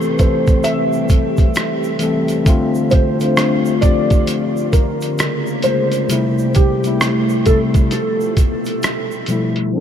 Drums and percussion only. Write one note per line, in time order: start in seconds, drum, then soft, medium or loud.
0.02 shaker soft
0.19 kick medium
0.19 closed hi-hat medium
0.19 shaker soft
0.47 kick medium
0.47 closed hi-hat soft
0.47 shaker soft
0.63 closed hi-hat medium
0.63 shaker medium
0.93 shaker soft
1.09 kick medium
1.09 closed hi-hat medium
1.09 shaker medium
1.37 kick medium
1.37 closed hi-hat soft
1.37 shaker soft
1.55 cross-stick loud
1.55 closed hi-hat medium
1.55 shaker medium
1.84 shaker soft
1.99 closed hi-hat medium
1.99 shaker soft
2.28 closed hi-hat soft
2.28 shaker soft
2.46 kick loud
2.46 closed hi-hat medium
2.46 shaker medium
2.75 shaker soft
2.91 kick loud
2.91 closed hi-hat medium
2.91 shaker soft
3.20 closed hi-hat soft
3.20 shaker soft
3.37 cross-stick loud
3.37 closed hi-hat medium
3.37 shaker medium
3.65 shaker medium
3.82 kick medium
3.82 closed hi-hat medium
3.82 shaker soft
4.10 kick medium
4.10 closed hi-hat soft
4.10 shaker soft
4.27 closed hi-hat medium
4.27 shaker medium
4.57 shaker soft
4.73 kick medium
4.73 closed hi-hat medium
4.73 shaker medium
5.01 closed hi-hat soft
5.01 shaker soft
5.19 cross-stick loud
5.19 closed hi-hat medium
5.19 shaker medium
5.47 shaker soft
5.62 closed hi-hat medium
5.62 shaker soft
5.92 closed hi-hat soft
5.92 shaker soft
6.10 closed hi-hat medium
6.10 shaker medium
6.38 shaker soft
6.54 kick loud
6.54 closed hi-hat medium
6.54 shaker soft
6.84 closed hi-hat soft
6.84 shaker medium
7.01 cross-stick loud
7.01 closed hi-hat medium
7.01 shaker medium
7.29 shaker soft
7.46 kick medium
7.46 closed hi-hat medium
7.46 shaker soft
7.74 kick medium
7.74 closed hi-hat soft
7.74 shaker soft
7.91 closed hi-hat medium
7.91 shaker medium
8.21 shaker soft
8.37 kick medium
8.37 closed hi-hat medium
8.37 shaker medium
8.65 closed hi-hat soft
8.65 shaker soft
8.83 cross-stick loud
8.83 closed hi-hat medium
8.83 shaker medium
9.11 shaker soft
9.26 closed hi-hat medium
9.26 shaker soft
9.56 closed hi-hat soft
9.56 shaker soft